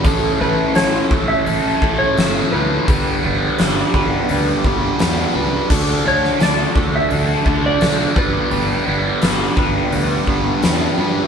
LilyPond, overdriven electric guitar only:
\new Staff \with { instrumentName = "Overdriven electric guitar" } { \time 4/4 \key g \lydian \tempo 4 = 85 <a, a cis' e' a'>8 <a, a cis' e' a'>8 <a, a cis' e' a'>8 <a, a cis' e' a'>8 <a, a cis' e' a'>8 <a, a cis' e' a'>8 <a, a cis' e' a'>8 <a, a cis' e' a'>8 | <g b d' b'>8 <g b d' b'>8 <g b d' b'>8 <g b d' b'>8 <g b d' b'>8 <g b d' b'>8 <g b d' b'>8 <g b d' b'>8 | <d d' fis' a'>8 <d d' fis' a'>8 <d d' fis' a'>8 <d d' fis' a'>8 <d d' fis' a'>8 <d d' fis' a'>8 <d d' fis' a'>8 <g b d' b'>8 | <g b d' b'>8 <g b d' b'>8 <g b d' b'>8 <g b d' b'>8 <g b d' b'>8 <g b d' b'>8 <g b d' b'>8 <g b d' b'>8 | }